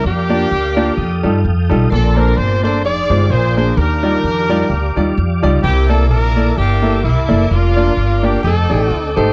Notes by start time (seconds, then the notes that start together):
Already playing: A#4
0.03 F2 A#3 D4 G4 D5 F5 D6
0.30 A#3 D4 F4 D5
0.51 D2
0.76 A#3 D4 F4 D5
0.97 F2 A4 G5 D#6
1.23 G2 G3 D#4 F4 A4
1.45 F2
1.70 B1 G3 D#4 F4 A4
1.90 A#1 A#2 C4 D4 A4 A#4 D5 A5 C6
2.16 A#3 D4 A4 A#4 C5
2.37 G1 C5
2.63 A#3 D4 A4 C5 D5
2.84 F1 D#4 G#4 D5 F5 C6
3.10 G1 G#3 D#4 F4 C5
3.30 A#1 A#2 F4 G#4 A#4 C5 D5 G#5
3.56 A#3 D4 G#4 C5
3.77 D#2 D#3 D4 G4 A#4 D5 F5 D6
4.03 G3 D#4 F4 D5
4.23 F2
4.49 G3 D#4 F4 D5
4.70 D2
4.96 D#2 G3 D#4 F4 D5
5.18 F2
5.42 C#2 G3 D#4 F4 D5
5.62 C2 C3 A#3 E4 G4 A#4 E5 A5
5.89 A#3 E4 A4 D5
6.09 A#1 D4 E4 A#4
6.36 A#3 E4 A4 D5
6.57 G1 A#3 E4 G4
6.82 A#3 E4 A4 E5
7.04 C2 G3 A#3 E4
7.29 F#1 A#3 E4 A4 D5
7.49 F1 A#3 D4 F4 D5 F5
7.76 A#3 D4 F4 D5
7.97 G1
8.23 A#3 D4 F4 G4 D5
8.43 F1 C4 D#4 A4 D#5 G5 D6
8.69 A1 A3 D#4 G4 D5
8.90 D2
9.16 G#1 A3 D#4 G4 A4 C5